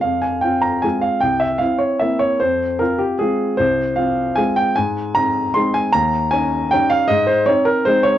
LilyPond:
\new Staff \with { instrumentName = "Grand piano" } { \time 3/4 \key f \minor \tempo 4 = 153 << { f''8 aes''8 g''8 bes''8 aes''8 f''8 | g''8 e''8 f''8 des''8 e''8 des''8 | c''4 bes'8 g'8 aes'4 | c''4 f''4 aes''8 g''8 |
aes''4 bes''4 c'''8 aes''8 | bes''4 aes''4 g''8 f''8 | ees''8 c''8 des''8 bes'8 c''8 des''8 | } \\ { f,4 <c' f'>4 <aes c' f'>4 | c,4 <c' e'>4 <bes c' e'>4 | f,4 <c' f'>4 <aes c' f'>4 | c,4 <c' f'>4 <aes c' f'>4 |
aes,4 <c' ees'>4 <aes c' ees'>4 | ees,4 <des' ees'>4 <g des' ees'>4 | aes,4 <c' ees'>4 <aes c' ees'>4 | } >> }